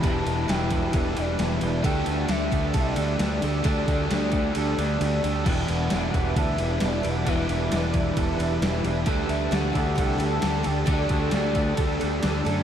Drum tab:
CC |--------|--------|--------|x-------|
RD |xxxxxxxx|xxxxxxxx|xxxxxxxx|-xxxxxxx|
SD |--o---o-|--o---o-|--o-----|--o---o-|
BD |o--oo---|o--oo---|oo-o----|o--oo---|

CC |--------|--------|--------|
RD |xxxxxxxx|xxxxxxxx|xxxxxxxx|
SD |--o---o-|--o---o-|--o---o-|
BD |o--oo---|o--oo---|oo-oo---|